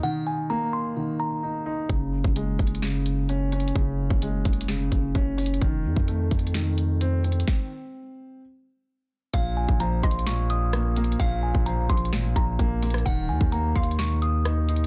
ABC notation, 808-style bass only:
X:1
M:4/4
L:1/16
Q:1/4=129
K:Bbm
V:1 name="808-style bass" clef=bass
z16 | G,,,3 G,,,3 G,,,8- G,,,2 | G,,,3 G,,,3 G,,,2 F,,, G,,, G,,,2 G,,,4 | F,,,2 F,, F,,3 F,,8- F,,2 |
z16 | B,,,3 B,,,3 B,,,8- B,,,2 | B,,,3 B,,,3 B,,,2 A,,, B,,, B,,,2 B,,,4 | E,,,2 E,, E,,3 E,,8- E,,2 |]